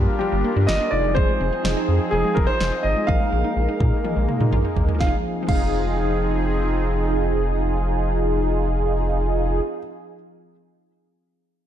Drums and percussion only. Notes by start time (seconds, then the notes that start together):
0.69 snare
1.17 kick
1.65 snare
2.37 kick
2.61 snare
3.09 kick
3.80 kick
4.05 high tom
4.29 mid tom
4.41 mid tom
4.53 mid tom
4.77 floor tom
4.89 floor tom
5.01 kick, snare
5.49 kick, crash